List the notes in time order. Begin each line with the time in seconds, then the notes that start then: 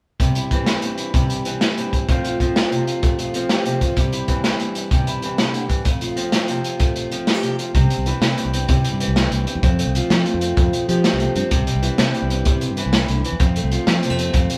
0.20 C3 G3, kick, closed hi-hat
0.35 E4, closed hi-hat
0.51 E3 C4, kick, closed hi-hat
0.66 E4, snare, closed hi-hat
0.82 G2 C4, closed hi-hat
0.98 E4, closed hi-hat
1.14 C3 G3, kick, closed hi-hat
1.29 E4, closed hi-hat
1.45 E3 C4, closed hi-hat
1.61 E4, snare, closed hi-hat
1.77 G2 C4, closed hi-hat
1.93 kick, closed hi-hat
2.08 F2 F3 A3 C4 F4, kick, closed hi-hat
2.25 F4, closed hi-hat
2.40 F3 C4, kick, closed hi-hat
2.56 F4, snare, closed hi-hat
2.70 C3 C4, closed hi-hat
2.87 F4, closed hi-hat
3.03 F2 A3, kick, closed hi-hat
3.19 F4, closed hi-hat
3.34 F3 C4, closed hi-hat
3.49 G4, snare, closed hi-hat
3.65 C3 C4, closed hi-hat
3.81 F4, kick, closed hi-hat
3.97 C3 G3, kick, closed hi-hat
4.12 E4, closed hi-hat
4.28 E3 C4, kick, closed hi-hat
4.44 E4, snare, closed hi-hat
4.59 G2 C4, closed hi-hat
4.75 E4, closed hi-hat
4.91 C3 G3, kick, closed hi-hat
5.07 E4, closed hi-hat
5.22 E3 C4, closed hi-hat
5.37 C3, snare, closed hi-hat
5.53 D3, closed hi-hat
5.68 E3, kick, closed hi-hat
5.85 F2 A3, kick, closed hi-hat
6.01 F4, closed hi-hat
6.16 F3 C4, closed hi-hat
6.32 F4, snare, closed hi-hat
6.48 C3 C4, closed hi-hat
6.64 F4, closed hi-hat
6.79 A3, muted steel-string acoustic guitar stroke, kick, closed hi-hat
6.96 F4, closed hi-hat
7.11 F3 C4, closed hi-hat
7.27 E4, snare, closed hi-hat
7.34 G4
7.43 C3 C4, closed hi-hat
7.59 F4, closed hi-hat
7.74 C2 C3 C4, kick, closed hi-hat
7.90 G3, closed hi-hat
7.97 C2
8.06 E3 E4, closed hi-hat
8.21 C3 C4, snare, closed hi-hat
8.37 G2 G3, closed hi-hat
8.45 C2
8.54 C4, closed hi-hat
8.68 C3 C4, kick, closed hi-hat
8.84 G3, closed hi-hat
8.93 G2
9.00 E3 E4, closed hi-hat
9.08 C2
9.15 C4, snare, closed hi-hat
9.30 C2 G2 G3, closed hi-hat
9.47 C4, closed hi-hat
9.55 E2
9.63 F2 C4, kick, closed hi-hat
9.79 A3, closed hi-hat
9.86 C2
9.95 F3 F4, closed hi-hat
10.10 F3 C4, snare, closed hi-hat
10.26 A3, closed hi-hat
10.34 F2
10.41 C4, closed hi-hat
10.56 F2 C4, kick, closed hi-hat
10.72 A3, closed hi-hat
10.88 F3 G4, closed hi-hat
11.04 C4, snare, closed hi-hat
11.13 C2
11.20 C3 A3, closed hi-hat
11.35 G2 C4, closed hi-hat
11.51 C2 C3 C4, kick, closed hi-hat
11.67 G3, closed hi-hat
11.75 C2
11.82 E3 E4, closed hi-hat
11.98 C3 C4, snare, closed hi-hat
12.14 G2 G3, closed hi-hat
12.22 C2
12.30 C4, closed hi-hat
12.45 C3 C4, kick, closed hi-hat
12.61 muted steel-string acoustic guitar stroke, closed hi-hat
12.71 G2
12.77 E3 E4, closed hi-hat
12.86 C2
12.93 muted steel-string acoustic guitar stroke, snare, closed hi-hat
13.08 C2 D3, closed hi-hat
13.24 E3, closed hi-hat
13.32 E2
13.40 F2 C4, kick, closed hi-hat
13.56 A3, closed hi-hat
13.64 C2
13.71 F3 F4, closed hi-hat
13.87 F3 C4, snare, closed hi-hat
14.03 C3 G3, closed hi-hat
14.10 F2 A3
14.18 C4, closed hi-hat
14.33 F2 C4, kick, closed hi-hat
14.50 closed hi-hat